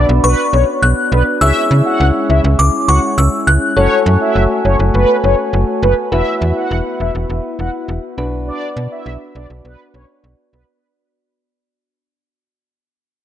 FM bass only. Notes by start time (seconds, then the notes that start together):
0.09 B1
0.24 B1
0.53 B1
0.82 B1
1.12 B1
1.41 C#2
1.71 C#3
2.00 C#2
2.30 C#2
2.44 C#2
2.59 C#2
2.88 C#2
3.18 C#2
3.47 C#2
3.77 F#1
4.06 F#2
4.36 F#1
4.65 F#1
4.79 F#1
4.94 F#1
5.24 F#1
5.53 F#1
5.83 F#1
6.12 E1
6.42 E2
6.71 E1
7.00 E1
7.15 E1
7.30 E1
7.59 E1
7.88 E1
8.18 B1
8.77 B2
9.06 B1
9.35 B1
9.50 B1
9.65 B1
9.94 B1
10.24 B1
10.53 B1